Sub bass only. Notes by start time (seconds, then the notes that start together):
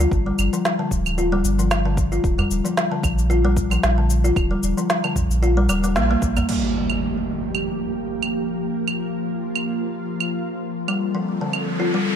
0.11 G1
0.38 G1
0.91 D1
1.44 G1
2.24 D#1
2.51 D#1
3.04 A#1
3.84 A#1
4.36 D#1
4.63 D#1
5.16 A#1
5.69 D#1
5.96 A#1
6.22 A#1